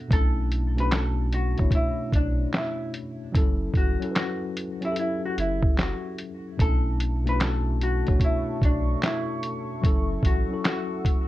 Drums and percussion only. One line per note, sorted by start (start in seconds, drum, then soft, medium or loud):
0.11 kick loud
0.11 closed hi-hat medium
0.52 closed hi-hat medium
0.78 closed hi-hat soft
0.92 snare loud
0.92 clap medium
0.92 closed hi-hat medium
1.33 closed hi-hat medium
1.58 kick medium
1.58 closed hi-hat soft
1.71 kick medium
1.71 closed hi-hat medium
2.13 kick medium
2.13 closed hi-hat medium
2.54 snare loud
2.54 clap medium
2.54 closed hi-hat medium
2.94 closed hi-hat medium
3.35 kick loud
3.35 closed hi-hat medium
3.74 kick medium
3.74 closed hi-hat medium
4.02 closed hi-hat soft
4.16 snare loud
4.16 clap medium
4.16 closed hi-hat medium
4.57 closed hi-hat medium
4.82 closed hi-hat soft
4.96 closed hi-hat medium
5.38 closed hi-hat medium
5.63 kick medium
5.78 snare loud
5.78 clap medium
5.78 closed hi-hat medium
6.18 closed hi-hat medium
6.59 kick loud
6.59 closed hi-hat medium
7.00 closed hi-hat medium
7.27 closed hi-hat soft
7.40 snare loud
7.40 clap medium
7.40 closed hi-hat medium
7.81 closed hi-hat medium
8.07 kick medium
8.07 closed hi-hat soft
8.20 kick medium
8.20 closed hi-hat medium
8.61 kick medium
8.61 closed hi-hat medium
9.03 snare loud
9.03 clap medium
9.03 closed hi-hat medium
9.43 closed hi-hat medium
9.84 kick loud
9.84 closed hi-hat medium
10.23 kick medium
10.23 closed hi-hat medium
10.65 snare loud
10.65 clap medium
10.65 closed hi-hat medium
11.05 kick medium
11.05 closed hi-hat medium